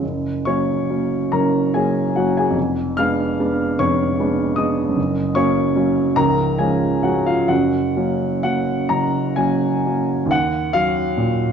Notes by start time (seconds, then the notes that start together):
0.03 F#1 F#2
0.45 F#3 A#3 C#4 C#5 C#6
0.90 F#3 A#3 C#4
1.32 F#1 F#2 A#4 A#5
1.74 F#3 A#3 C#4 G#4 G#5
2.16 F#3 A#3 C#4 F#4 F#5
2.37 G#4 G#5
2.50 F1 F2
2.97 G#3 B3 D4 F5 F6
3.39 G#3 B3 D4
3.79 F1 F2 C#5 C#6
4.19 G#3 B3 D4
4.56 G#3 B3 D4 D#5 D#6
4.89 F#2
4.96 F#1
5.35 F#3 A#3 C#4 C#5 C#6
5.76 F#3 A#3 C#4
6.16 C#1 C#2 A#4 A#5
6.58 F3 G#3 C#4 G#4 G#5
7.03 F3 G#3 C#4 F#4 F#5
7.26 F4 F5
7.48 F#1 F#2 F#4 F#5
7.96 F#3 A#3 C#4
8.43 F#3 A#3 C#4 F#5
8.89 F#1 F#2 A#5
9.36 F#3 A#3 C#4 G#5
9.86 F#3 A#3 C#4
10.26 D#2
10.31 F#5
10.73 F#3 F5
11.17 A#2